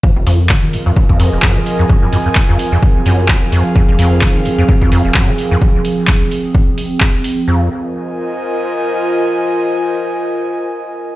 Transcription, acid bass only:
X:1
M:4/4
L:1/16
Q:"Swing 16ths" 1/4=129
K:Fm
V:1 name="Acid bass" clef=bass
F,, F,,, F,,2 E,2 F,, F,, F,, F,, F,, F,,, _G,, F, z F,, | F,, _G,, G,, F,, z F,, z F,, z2 G,,2 F,, z F,, z | F,, F,,, F,,2 E,2 F,, F,, F,, F,, F,, F,,, _G,, F, z F,, | z16 |
F,,2 z12 z2 | z16 |]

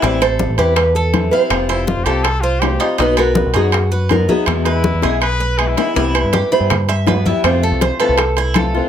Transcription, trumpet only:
X:1
M:4/4
L:1/16
Q:1/4=162
K:C
V:1 name="Trumpet"
z16 | z2 E2 F2 G2 A2 F2 G3 z | z16 | z2 E6 B4 ^G E3 |
z16 | z16 |]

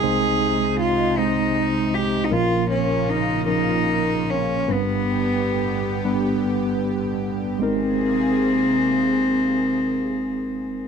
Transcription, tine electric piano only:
X:1
M:6/8
L:1/8
Q:3/8=47
K:Ab
V:1 name="Tine electric piano"
[A,CEc]2 z [A,CEc]2 z | [F,B,DB]2 z [F,B,DB]2 z | [G,=B,=D=B]2 z [G,B,DB]2 z | [A,CEB]6 |]
V:2 name="Tine electric piano" clef=bass
[C,,C,]6 | [B,,,B,,]6 | [G,,,G,,]6 | A,,,6 |]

